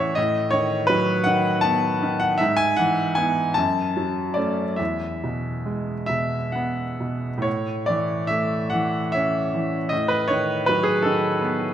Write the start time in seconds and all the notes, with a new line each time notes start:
Already playing: A2 E3 A3 C#4 C#5 D5 E5 F#5 G#5
0.15 A2 D#5
0.51 D#3 C#5
0.87 F#3 B4
1.24 D#3 F#5
1.61 B3 A5
2.03 D#3
2.20 F#5
2.38 G#2 E5
2.57 G#5
2.77 E3 F#5
3.15 B3 E4 G#5
3.54 F#2 A5
3.97 F#3
4.34 A3 C#4 D5
4.76 E2 E5
5.24 B2
5.66 G#3
6.06 B2 E5
6.52 B3 F#5
7.00 B2
7.38 A2
7.42 C#5
7.86 E3 D5
8.27 A3 E5
8.70 E3 F#5
9.12 C#4 E5
9.54 E3
9.89 A2 D#5
10.08 B4
10.28 D#3 C#5
10.66 F#3 B4
10.83 G#4
11.02 D#3 A4
11.41 B3